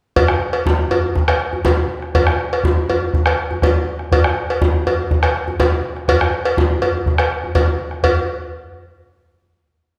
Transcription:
0.16 bombo low, cowbell, djembe tone, djembe bass
0.28 bombo rim, djembe slap
0.41 djembe slap
0.53 cowbell, djembe slap
0.66 bombo low, djembe slap, djembe tone
0.91 cowbell, djembe bass
1.15 bombo low, djembe slap, djembe tone
1.28 bombo rim, cowbell
1.40 bombo rim
1.53 djembe bass
1.65 bombo rim, bombo low, cowbell, djembe slap, djembe tone
1.77 djembe slap
1.90 djembe slap
2.02 bombo rim
2.15 bombo low, cowbell, djembe tone, djembe bass
2.27 bombo rim, djembe slap
2.40 djembe slap
2.52 cowbell, djembe slap
2.64 bombo low, djembe slap, djembe tone
2.89 cowbell, djembe bass
3.14 bombo low, djembe slap, djembe tone
3.26 bombo rim, cowbell
3.38 bombo rim
3.51 djembe bass
3.62 bombo rim, bombo low, cowbell, djembe slap, djembe tone
3.76 djembe slap
3.89 djembe slap
3.99 bombo rim
4.12 bombo low, cowbell, djembe tone, djembe bass
4.24 bombo rim, djembe slap
4.37 djembe slap
4.49 cowbell, djembe slap
4.61 bombo low, djembe slap, djembe tone
4.87 cowbell, djembe bass
5.11 bombo low, djembe slap, djembe tone
5.23 bombo rim, cowbell
5.36 bombo rim
5.48 djembe bass
5.60 bombo rim, bombo low, cowbell, djembe slap, djembe tone
5.72 djembe slap
5.84 djembe slap
5.97 bombo rim
6.08 bombo rim, bombo low, cowbell, djembe tone, djembe bass
6.21 bombo rim
6.45 cowbell
6.57 bombo rim, bombo low, djembe slap, djembe tone
6.70 djembe slap
6.82 cowbell, djembe bass
7.06 bombo low, djembe tone
7.18 bombo rim, cowbell, djembe slap
7.44 djembe bass
7.55 bombo low, cowbell, djembe slap, djembe tone
7.91 bombo rim, djembe slap
8.03 bombo low, cowbell, djembe bass

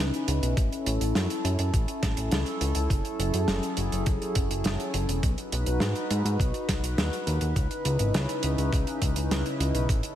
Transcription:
Already playing: C#3 C#4 D#4 E4 B4
0.00 C#2
0.14 closed hi-hat
0.28 C#2, closed hi-hat
0.42 B1, closed hi-hat
0.57 A1 A4, kick, closed hi-hat
0.72 closed hi-hat
0.86 A1, closed hi-hat
1.01 A1, closed hi-hat
1.15 F#2, snare, closed hi-hat
1.30 closed hi-hat
1.44 F#2, closed hi-hat
1.59 F#2, closed hi-hat
1.74 A1, kick, closed hi-hat
1.88 closed hi-hat
2.03 A1, kick, snare, closed hi-hat
2.17 A1, closed hi-hat
2.31 C#2, snare, closed hi-hat
2.46 closed hi-hat
2.61 C#2, closed hi-hat
2.75 C#2, closed hi-hat
2.90 F#1 F#3 G#4, kick, closed hi-hat
3.05 closed hi-hat
3.19 F#1, closed hi-hat
3.34 F#2, closed hi-hat
3.48 F#1, snare, closed hi-hat
3.63 closed hi-hat
3.77 F#1, closed hi-hat
3.92 F#1, closed hi-hat
4.06 F#1, kick, closed hi-hat
4.22 closed hi-hat
4.35 F#1, kick, closed hi-hat
4.50 F#1, closed hi-hat
4.64 F#1, snare, closed hi-hat
4.80 closed hi-hat
4.94 F#1, closed hi-hat
5.09 E1, closed hi-hat
5.23 B1 D#4 F#4 B4, kick, closed hi-hat
5.38 closed hi-hat
5.52 B1, closed hi-hat
5.66 B1, closed hi-hat
5.80 G#2, snare, closed hi-hat
5.95 closed hi-hat
6.11 G#2, closed hi-hat
6.25 G#2, closed hi-hat
6.40 B1, kick, closed hi-hat
6.54 closed hi-hat
6.69 B1, kick, snare, closed hi-hat
6.83 B1, closed hi-hat
6.98 D#2, snare, closed hi-hat
7.13 closed hi-hat
7.27 D#2, closed hi-hat
7.41 D#2, closed hi-hat
7.56 C#2 C#3 C#4 D#4 E4, kick, closed hi-hat
7.71 closed hi-hat
7.85 C#2, closed hi-hat
7.99 G#1, closed hi-hat
8.14 C#2, snare, closed hi-hat
8.29 closed hi-hat
8.43 C#2, closed hi-hat
8.58 C#2, closed hi-hat
8.73 C#2, kick, closed hi-hat
8.87 closed hi-hat
9.02 C#2, kick, closed hi-hat
9.16 C#2, closed hi-hat
9.31 C#2, snare, closed hi-hat
9.46 closed hi-hat
9.60 C#2, closed hi-hat
9.75 B1, closed hi-hat
9.89 A1 C#4 A4, kick, closed hi-hat
10.03 closed hi-hat

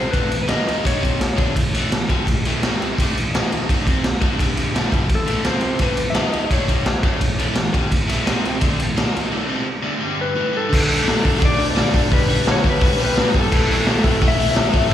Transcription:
Already playing: C3 G3 C4 C5
0.11 D3 A3 D4 B4, kick, ride
0.31 A2 E3, ride
0.43 B4
0.48 D#3 A#3 D#4 D#5, snare, ride
0.69 ride
0.85 D3 A3 D4 C#5, kick, ride
0.99 C3 G3 C4
1.03 kick, ride
1.21 snare, ride
1.37 D3 A3 D4, kick, ride
1.55 A2 E3, kick, ride
1.74 A2 E3 A3, ride
1.92 A2 E3, snare, ride
2.09 G2 D3 G3, kick, ride
2.27 A2 E3, kick, ride
2.45 A2 E3 A3, ride
2.63 C3 G3 C4, snare, ride
2.82 ride
2.98 D3 A3 D4, kick, ride
3.18 A2 E3, ride
3.35 D#3 A#3 D#4, snare, ride
3.52 ride
3.69 D3 A3 D4, kick, ride
3.87 C3 G3 C4, kick, ride
4.04 snare, ride
4.21 D3 A3 D4, kick, ride
4.39 G2 D3 G3, kick, ride
4.57 ride
4.74 A2 E3 A3, snare, ride
4.90 G2 D3 G3, kick, ride
5.09 A2 E3, kick, ride
5.15 A4
5.26 A2 E3 A3, ride
5.44 C3 G3 C4 C5, snare, ride
5.61 ride
5.79 D3 A3 D4 B4, kick, ride
5.97 A2 E3, ride
6.10 D#3 E5
6.15 A#3 D#4 D#5, snare, ride
6.33 ride
6.51 D3 A3 D4 C#5, kick, ride
6.68 C3 G3 C4, kick, ride
6.86 snare, ride
7.03 D3 A3 D4, kick, ride
7.21 A2 E3, kick, ride
7.39 A2 E3 A3, ride
7.55 A2 E3, snare, ride
7.65 snare
7.73 G2 D3 G3, kick, ride
7.92 A2 E3, kick, ride
8.08 A2 E3 A3, ride
8.26 C3 G3 C4, snare, ride
8.45 ride
8.61 D3 A3 D4, kick, ride
8.80 A2 E3, ride
8.96 D#3 A#3 D#4, snare, ride
9.07 snare
9.17 ride
9.31 D3 A3 D4
9.47 C3 G3 C4
9.83 D3 A3 D4
10.00 G2 D3 G3
10.21 B4
10.35 A2 E3 A3
10.52 G2 D3 G3
10.57 A4
10.68 D3 A3 D4
10.73 kick, crash
10.85 D3 A3 D4
10.91 open hi-hat
11.03 D3 A3 D4
11.08 snare, open hi-hat
11.22 D3 A3 D4, kick
11.26 open hi-hat
11.39 D3 A3 D4, kick, open hi-hat
11.45 D5
11.57 D3 A3 D4, open hi-hat
11.71 D3 D5
11.75 A3 D4, snare, open hi-hat
11.94 D3 A3 D4, kick, open hi-hat
12.10 G2 D3 G3 B4, kick, open hi-hat
12.28 G2 D3 G3, open hi-hat
12.45 G2 D3 G3, snare, open hi-hat
12.51 C#5
12.64 G2 D3 G3, kick, open hi-hat
12.70 B4
12.80 G2 D3 G3, kick, open hi-hat
12.99 G2 D3 G3, open hi-hat
13.05 B4
13.16 G2 D3 G3, snare, open hi-hat
13.34 G2 D3 G3, kick, open hi-hat
13.39 A4
13.51 A2 E3 A3, kick, crash
13.70 A2 E3 A3, open hi-hat
13.86 A2 E3 A3, snare, open hi-hat
14.04 A2 E3 A3, kick, open hi-hat
14.21 A2 E3 A3, kick, open hi-hat
14.28 E5
14.39 A2 E3 A3, open hi-hat
14.51 A2 E5
14.55 E3 A3, snare, open hi-hat
14.71 A2 E3 A3, kick, open hi-hat
14.89 A2 E3 A3

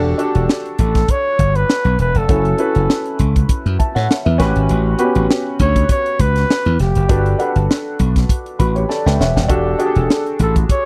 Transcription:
Already playing: E1 D4 F#4 G4 A4
0.18 D4 F#4 G4 A4, closed hi-hat
0.35 E1, closed hi-hat
0.49 snare
0.66 closed hi-hat
0.79 A1 A4, kick, closed hi-hat
0.95 kick, snare, closed hi-hat
1.08 C#5, kick, closed hi-hat
1.39 G1, kick, closed hi-hat
1.55 B4, closed hi-hat
1.70 snare
1.85 B1, closed hi-hat
1.99 E1 B4, closed hi-hat
2.15 F1 A4, closed hi-hat
2.28 F#1 C#4 E4 F#4 A4, kick, closed hi-hat
2.45 closed hi-hat
2.58 C#4 E4 F#4 B4, closed hi-hat
2.75 F#1, closed hi-hat
2.90 snare
3.06 closed hi-hat
3.19 C#2, kick, closed hi-hat
3.36 kick, closed hi-hat
3.49 muted slap bass stroke, kick, closed hi-hat
3.66 F#2, closed hi-hat
3.79 E5 A5, kick, closed hi-hat
3.95 A2 C#5 F#5, snare, closed hi-hat
4.11 snare
4.25 E2 B4 E5, closed hi-hat
4.38 A1 C#4 F#4 G4 B4, kick, snare, closed hi-hat
4.56 G#1, closed hi-hat
4.69 A1, closed hi-hat
4.98 B3 F#4 G4 B4, closed hi-hat
5.04 C#4
5.15 A1, closed hi-hat
5.31 snare
5.59 D2 C#5, kick, closed hi-hat
5.76 kick, closed hi-hat
5.89 C#5, kick, closed hi-hat
6.06 closed hi-hat
6.19 C#2 B4, kick, closed hi-hat
6.36 snare, closed hi-hat
6.50 snare
6.65 E2, closed hi-hat
6.79 F1 G4, snare, closed hi-hat
6.95 F#1, closed hi-hat
7.09 G1 D4 F#4 A4 B4, kick, closed hi-hat
7.26 closed hi-hat
7.39 D4 A4 B4 F#5, closed hi-hat
7.56 G1, closed hi-hat
7.71 snare
7.99 B1, kick, closed hi-hat
8.16 kick, snare, closed hi-hat
8.29 kick, closed hi-hat
8.46 closed hi-hat
8.59 A1 F#4 B4 B5, kick, closed hi-hat
8.75 G4 C#5, closed hi-hat
8.89 A4 D5 A5, snare
9.06 C#2 B4 E5 G5, snare
9.20 E1 C#5 E5 F#5, snare
9.36 D#1 D5 G5, snare
9.48 E1 D4 F#4 G4 A4, kick, closed hi-hat
9.79 D4 F#4 G4 G#4, closed hi-hat
9.86 A4
9.95 E1, closed hi-hat
10.10 snare
10.26 closed hi-hat
10.39 A1 A4, kick, closed hi-hat
10.56 kick, closed hi-hat
10.69 C#5, kick, closed hi-hat

